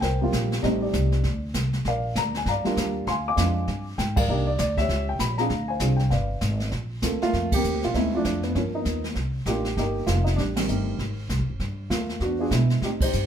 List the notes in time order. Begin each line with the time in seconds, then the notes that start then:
0.01 C2 A#4 C5 G5, brush sweep, kick, snare
0.21 G3 A#3 C4 F4
0.32 A#1, kick, snare, hi-hat pedal
0.52 snare
0.62 A1 G3 A3 C4 D#4 G4 C5 D#5, brush sweep, kick, snare
0.81 G4 D5
0.93 C2, kick, snare, hi-hat pedal
1.12 snare
1.24 D2, brush sweep, kick, snare
1.54 C2, kick, snare, hi-hat pedal
1.73 snare
1.85 A#1 A#4 D5 F5, brush sweep, kick, snare
2.15 D2 A#5, kick, snare, hi-hat pedal
2.35 G#5, snare
2.46 G2 F5 A#5, brush sweep, kick, snare
2.50 D5
2.64 G3 A#3 D4 F4, muted upright bass stroke, snare
2.76 D#2, kick, snare, hi-hat pedal
3.07 D2 F5 G#5 C6, brush sweep, kick, snare
3.28 F5 G#5 D6
3.36 F2 G#3 C4 D4 F4, kick, snare, hi-hat pedal
3.67 G2, brush sweep, kick, snare
3.98 G#2 G5, kick, snare, hi-hat pedal
4.16 A#4 D5 F5, kick, crash
4.29 C2 A#3 D4 D#4 G4, brush sweep
4.47 D5
4.58 D2 D5, kick, snare, hi-hat pedal
4.77 G4 C#5 E5, kick, snare
4.89 C#2, brush sweep, kick, snare
5.09 G5
5.19 A#1 B5, kick, snare, hi-hat pedal
5.38 C4 D4 F4 G#4 F5 A#5, snare
5.50 D2, brush sweep, kick, snare
5.68 C5 F5 G#5
5.80 C2 C4 D4 F4 G#4, kick, snare, hi-hat pedal
5.96 G5, snare
6.10 G1 B4 D5 F5, brush sweep, kick, snare
6.41 G#1, kick, snare, hi-hat pedal
6.60 snare
6.71 A#1, brush sweep, kick, snare
7.02 D2 A#3 C4 F4 A4, kick, snare, hi-hat pedal
7.22 A3 A#3 F4, muted upright bass stroke, snare
7.33 F2, brush sweep, kick, snare
7.52 A#3 C4 G4, kick, ride
7.64 D#2, hi-hat pedal
7.74 D2
7.82 A#1 F4, snare
7.94 D2 G#3 A3 B3 D#4 E4, brush sweep, kick, snare
7.98 C4
8.13 A3 C4 D4 E4 F4
8.17 F3 A3
8.25 F2, kick, snare, hi-hat pedal
8.43 B3, snare
8.55 G2 F3 A#3 C#4, brush sweep, kick, snare
8.75 A#3 B3 D#4
8.85 D#2, kick, snare, hi-hat pedal
9.04 snare
9.15 C2, brush sweep, kick, snare
9.46 A1 A#3 D4 D#4 F4 G4, kick, snare, hi-hat pedal
9.65 snare
9.77 G1 A#3 D#4 G4, brush sweep, kick, snare
10.07 F1 F4, kick, snare, hi-hat pedal
10.24 D#4, snare
10.36 A1 G3 D4, brush sweep, kick, snare
10.56 D#3 G3 C4, snare, ride
10.67 G1 A3 C4 D#4 G4, hi-hat pedal
10.99 G#1, brush sweep, kick, snare
11.29 C2, kick, snare, hi-hat pedal
11.39 G#1
11.50 F#1
11.60 G2, brush sweep, kick, snare
11.90 D#2 A3 A#3 F4, kick, snare, hi-hat pedal
12.09 snare
12.20 E2 B3 D4 F#4, brush sweep, kick, snare
12.39 B3 D4 F4 G#4
12.51 B2 G#3 B3 E4, kick, snare, hi-hat pedal
12.70 snare
12.81 A2 C4 D#4 G4, brush sweep, kick, snare
13.01 D#4 G4 C5, kick, ride
13.13 G2, hi-hat pedal